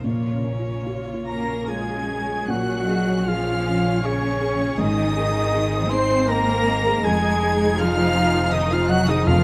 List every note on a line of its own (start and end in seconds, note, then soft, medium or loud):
0.04 2.25 A#1 soft
0.04 2.45 A#2 soft
0.04 1.25 A#2 soft
0.04 2.49 A#2 soft
0.04 0.43 A#3 soft
0.04 0.42 F4 soft
0.04 0.43 C#5 soft
0.04 2.09 C#5 medium
0.32 4.22 C#3 soft
0.32 0.76 C#4 soft
0.45 0.86 C#4 soft
0.45 0.87 C#4 soft
0.45 0.86 A#4 soft
0.59 3.01 C#4 soft
0.59 1.03 F4 soft
0.86 1.28 A#3 soft
0.86 1.28 F4 soft
0.86 1.14 F#4 soft
0.86 1.28 C#5 soft
1.14 1.57 F4 soft
1.14 1.67 C#5 soft
1.26 1.65 A#3 medium
1.26 1.68 C#4 soft
1.26 1.69 C#4 soft
1.26 1.65 A#4 medium
1.26 1.68 A#4 soft
1.26 1.66 A#4 medium
1.26 1.67 A#5 medium
1.26 1.71 A#5 medium
1.26 1.66 A#6 medium
1.40 1.84 C#4 soft
1.66 2.49 G#3 medium
1.66 2.07 A#3 soft
1.66 2.11 F4 soft
1.66 2.07 F4 soft
1.66 2.49 G#4 medium
1.66 2.50 G#4 medium
1.66 3.53 C#5 soft
1.66 2.06 C#5 soft
1.66 2.50 G#5 medium
1.66 2.52 G#5 medium
1.66 2.50 G#6 medium
1.96 2.39 C#4 soft
2.08 2.48 C#4 soft
2.08 2.50 C#4 soft
2.08 2.50 A#4 soft
2.23 2.49 C#5 soft
2.48 4.76 A#1 medium
2.48 4.75 A#2 medium
2.48 4.83 A#2 medium
2.48 3.28 F#3 medium
2.48 5.51 C#4 medium
2.48 3.28 F#4 medium
2.48 7.01 G#4 medium
2.48 3.30 F#5 medium
2.48 3.29 F#5 medium
2.48 3.26 F#6 medium
2.68 3.00 C#5 soft
2.76 4.83 G#3 soft
2.88 3.20 G#4 soft
3.03 4.83 C#4 soft
3.07 3.39 C#5 soft
3.27 4.05 F3 medium
3.27 4.05 F4 medium
3.27 3.59 G#4 soft
3.27 3.78 G#4 medium
3.27 4.07 F5 medium
3.27 4.09 F5 medium
3.27 4.05 F6 medium
3.47 3.78 C#5 soft
3.54 4.03 C#5 soft
3.68 3.98 C#4 soft
3.79 4.29 G#4 medium
3.86 4.16 C#5 soft
4.03 4.78 C#3 medium
4.03 4.79 C#4 medium
4.03 4.80 C#4 medium
4.03 4.35 G#4 soft
4.03 4.83 C#5 soft
4.03 4.78 C#5 medium
4.03 4.80 C#6 medium
4.07 4.82 C#5 medium
4.23 4.53 C#5 soft
4.41 4.72 G#4 medium
4.54 4.83 F3 soft
4.60 4.79 C#4 soft
4.78 7.01 G#1 medium
4.78 7.01 G#2 medium
4.78 7.08 G#2 medium
4.78 5.90 D#3 medium
4.78 5.90 D#4 medium
4.78 5.91 D#5 medium
4.78 5.92 D#6 loud
4.97 5.28 D#5 medium
5.05 6.80 D#3 soft
5.17 5.47 G#4 medium
5.29 7.54 D#4 medium
5.36 5.66 D#5 medium
5.54 7.05 C4 medium
5.54 5.85 G#4 soft
5.73 6.04 C5 soft
5.89 6.29 C4 medium
5.89 6.23 D#4 medium
5.89 6.30 C5 medium
5.89 6.30 C6 medium
5.89 6.33 C6 medium
5.89 6.30 C7 loud
6.06 6.56 G#4 medium
6.11 6.42 C5 soft
6.29 7.05 A#3 medium
6.29 7.05 A#4 medium
6.29 7.06 A#4 medium
6.29 6.60 D#5 medium
6.29 7.04 A#5 loud
6.29 7.06 A#5 medium
6.29 7.04 A#6 loud
6.49 6.79 C5 medium
6.57 7.79 G#4 soft
6.67 6.98 D#5 medium
6.81 7.09 D#3 medium
6.86 7.05 G#4 medium
7.04 9.44 F1 medium
7.04 9.24 F2 medium
7.04 9.26 F2 medium
7.04 7.77 G#3 medium
7.04 9.24 D#4 medium
7.04 7.77 G#4 medium
7.04 7.78 G#4 medium
7.04 9.24 G#4 medium
7.04 7.53 G#5 medium
7.04 7.52 G#5 medium
7.04 7.78 G#6 loud
7.25 7.54 D#5 medium
7.31 9.02 C3 medium
7.43 7.72 G#4 medium
7.55 9.31 D#4 medium
7.61 7.90 D#5 medium
7.77 8.53 F3 medium
7.77 8.53 F4 medium
7.77 8.35 F4 medium
7.77 8.09 G#4 medium
7.77 8.28 G#4 medium
7.77 8.56 F5 medium
7.77 8.54 F5 medium
7.77 8.53 F6 loud
7.97 8.27 C5 medium
8.15 8.45 D#4 medium
8.29 8.77 G#4 medium
8.35 8.65 C5 medium
8.52 8.71 D#3 medium
8.52 8.71 D#4 medium
8.52 8.72 D#4 medium
8.52 8.83 D#5 medium
8.52 8.73 D#5 medium
8.52 8.75 D#5 loud
8.52 8.71 D#6 loud
8.70 8.90 F3 medium
8.70 8.90 F4 medium
8.70 8.91 F4 medium
8.70 9.01 C5 medium
8.70 8.93 F5 medium
8.70 8.89 F5 medium
8.70 8.91 F6 loud
8.88 9.08 F#3 medium
8.88 9.08 F#4 medium
8.88 9.09 F#4 medium
8.88 9.19 D#5 medium
8.88 9.10 F#5 medium
8.88 9.08 F#6 loud
9.03 9.31 C3 medium
9.03 9.27 D#4 medium
9.07 9.27 D#3 medium
9.07 9.28 D#4 medium
9.07 9.27 G#4 medium
9.07 9.28 D#5 medium
9.07 9.29 D#5 medium
9.07 9.27 D#6 loud
9.24 9.44 F2 medium
9.24 9.44 F2 loud
9.24 9.44 F3 medium
9.24 9.44 F4 medium
9.24 9.44 A#4 medium
9.24 9.44 F5 medium
9.24 9.44 F6 loud
9.29 9.44 C4 medium